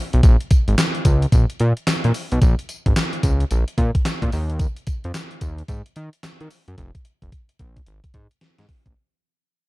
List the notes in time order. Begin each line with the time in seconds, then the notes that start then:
0.13 B1, closed hi-hat
0.23 A#1, kick, closed hi-hat, tambourine
0.41 closed hi-hat
0.51 kick, closed hi-hat, tambourine
0.68 G#1, closed hi-hat
0.78 snare, clap, closed hi-hat, tambourine
0.95 closed hi-hat
1.05 C#2, kick, closed hi-hat, tambourine
1.22 closed hi-hat
1.32 A#1, kick, closed hi-hat, tambourine
1.50 closed hi-hat
1.60 A#2, closed hi-hat
1.77 closed hi-hat
1.87 snare, clap, closed hi-hat, tambourine
2.04 A#2, closed hi-hat
2.14 open hi-hat, tambourine
2.32 B1, closed hi-hat
2.42 A#1, kick, closed hi-hat, tambourine
2.59 closed hi-hat
2.69 closed hi-hat, tambourine
2.86 G#1, kick, closed hi-hat
2.96 snare, clap, closed hi-hat, tambourine
3.13 closed hi-hat
3.23 C#2, kick, closed hi-hat, tambourine
3.40 closed hi-hat
3.51 A#1, closed hi-hat, tambourine
3.68 closed hi-hat
3.78 A#2, kick, closed hi-hat
3.95 kick, closed hi-hat
4.05 snare, clap, closed hi-hat, tambourine
4.22 A#2, kick, closed hi-hat
4.32 D#2, open hi-hat, tambourine
4.50 closed hi-hat
4.59 kick, closed hi-hat, tambourine
4.76 closed hi-hat
4.87 kick, closed hi-hat, tambourine
5.04 F2, closed hi-hat
5.14 snare, clap, closed hi-hat, tambourine
5.31 closed hi-hat
5.41 D#2, kick, closed hi-hat, tambourine
5.58 closed hi-hat
5.68 G#2, kick, closed hi-hat, tambourine
5.86 closed hi-hat
5.96 D#3, closed hi-hat
6.13 closed hi-hat
6.23 snare, clap, closed hi-hat, tambourine
6.40 D#3, closed hi-hat
6.50 open hi-hat, tambourine
6.68 F#2, closed hi-hat
6.78 F1, kick, closed hi-hat
6.95 kick, closed hi-hat
7.05 closed hi-hat
7.22 F1, kick, closed hi-hat
7.32 kick, closed hi-hat
7.49 closed hi-hat
7.59 A#1, kick, closed hi-hat
7.77 kick, closed hi-hat
7.86 G#1, closed hi-hat
8.04 kick, closed hi-hat
8.14 G#2, kick, closed hi-hat
8.31 closed hi-hat
8.41 snare, closed hi-hat
8.58 G#2, snare, closed hi-hat
8.69 kick, open hi-hat
8.86 A1, kick, closed hi-hat